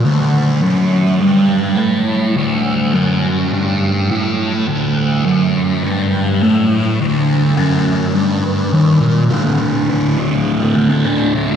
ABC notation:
X:1
M:4/4
L:1/16
Q:1/4=104
K:D
V:1 name="Distorted electric guitar" clef=bass
D,,4 F,,4 G,,4 A,,4 | D,,4 F,,4 G,,4 A,,4 | D,,4 F,,4 G,,4 A,,4 | D,,4 F,,4 G,,4 _E,,2 _B,,2 |
[D,,A,,D,] [A,,D,] [D,,A,,D,]2 [D,,A,,D,]2 [D,,A,,D,] [A,,D,]2 [A,,D,] [D,,A,,D,] [A,,D,] [D,,A,,D,]2 [D,,A,,D,] [A,,D,] |]